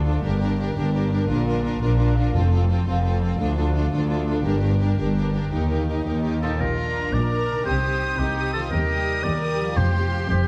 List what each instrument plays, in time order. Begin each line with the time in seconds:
Already playing: double bass section D2, cello section D2, harp D3 F3 A3 A4 D5 F5
0.05 viola section D4, violin section F4 A4, harp F4
0.23 double bass section G1, cello section G2, harp G2, viola section D4, violin section G4 A#4
0.39 viola section D4, violin section G4 A#4
0.43 harp D3
0.58 viola section D4, violin section G4 A#4, harp G4
0.75 double bass section G1, cello section G2, viola section D4, violin section G4 A#4, harp D5
0.93 viola section D4, violin section G4 A#4, harp A#4
1.12 viola section D4, violin section G4 A#4, harp G4
1.28 double bass section A#1, harp A#2, cello section A#2, viola section D4, violin section F4 A#4
1.47 harp F3, viola section D4, violin section F4 A#4
1.64 viola section D4, violin section F4 A#4, harp F4
1.81 double bass section A#1, cello section A#2, viola section D4, violin section F4 A#4, harp D5
1.97 viola section D4, violin section F4 A#4, harp A#4
2.17 viola section D4, violin section F4 A#4, harp F4
2.34 double bass section F1, timpani F2, cello section F2, harp F3, viola section C4, violin section F4 A4
2.51 viola section C4, harp C4, violin section F4 A4
2.70 viola section C4, violin section F4 A4, harp A4
2.86 double bass section F1, cello section F2, viola section C4, violin section F4 A4, harp F5
3.04 viola section C4, violin section F4 A4, harp C5
3.22 viola section C4, violin section F4 A4, harp A4
3.38 cello section D2, double bass section D2, harp D3, viola section D4, violin section F4 A4
3.57 harp A3, viola section D4, violin section F4 A4
3.74 viola section D4, harp F4, violin section F4 A4
3.92 double bass section D2, cello section D2, viola section D4, violin section F4 A4, harp D5
4.10 viola section D4, violin section F4 A4, harp A4
4.26 viola section D4, violin section F4 A4, harp F4
4.43 double bass section G1, cello section G2, harp G2, viola section D4, violin section G4 A#4
4.61 harp D3, viola section D4, violin section G4 A#4
4.79 viola section D4, violin section G4 A#4, harp G4
4.97 double bass section G1, cello section G2, viola section D4, violin section G4 A#4, harp D5
5.15 viola section D4, violin section G4 A#4, harp A#4
5.32 viola section D4, violin section G4, harp G4
5.36 violin section A#4
5.50 double bass section D#2, cello section D#2, harp D#3, viola section D#4, violin section G4 A#4
5.69 harp A#3, viola section D#4, violin section G4 A#4
5.88 viola section D#4, violin section G4 A#4, harp G4
6.04 double bass section D#2, cello section D#2, viola section D#4, violin section G4 A#4, harp D#5
6.23 viola section D#4, violin section G4 A#4, harp A#4
6.42 harp A#2 G4, viola section D#4, violin section F4 G4 A#4, oboe A4
6.47 harp D4
6.52 harp F4
6.56 harp A#4, oboe A#4
6.61 double bass section A#1, cello section A#2, violin section F4
6.77 viola section D4 A#4, violin section A#5
7.13 double bass section A#1, cello section A#2, violin section A#4, oboe D5
7.32 viola section D4 A#4, violin section A#5
7.49 harp C3
7.54 harp D#4
7.58 harp G4
7.65 double bass section C2, cello section C3, viola section C4 G4, violin section G4 D#6, oboe C5
7.84 viola section C4 G4, violin section D#6
8.19 double bass section C2, cello section C3, violin section D#4, oboe G4
8.38 viola section C4 G4, violin section D#6
8.53 harp D#3, violin section F4, oboe A4
8.59 harp D#4
8.64 harp G4
8.71 double bass section D#2, cello section D#2, violin section G4, oboe A#4
8.91 viola section G3 G4, violin section D#6
9.24 double bass section D#2, cello section D#2, violin section A#4, oboe D5
9.43 viola section G3 G4, violin section D#6
9.61 harp F3
9.65 harp C4
9.69 harp F4
9.74 timpani F2, cello section F2, harp G4, violin section G4 C6, oboe C5
9.78 double bass section F1, viola section F3 G4
9.93 viola section F3 G4, violin section C6
10.30 double bass section F1, cello section F2, violin section C4, oboe G4